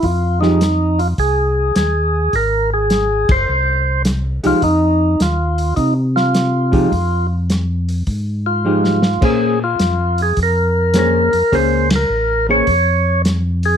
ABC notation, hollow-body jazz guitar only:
X:1
M:4/4
L:1/8
Q:"Swing" 1/4=104
K:Fm
V:1 name="Hollow-body jazz guitar"
z [F,A,EG] z6 | z6 z [F,A,EG] | z6 z [F,A,EG] | z6 [F,A,EG] z |
[B,DAc] z4 z [B,DAc] z | [B,DAc] z2 [B,DAc] z4 |]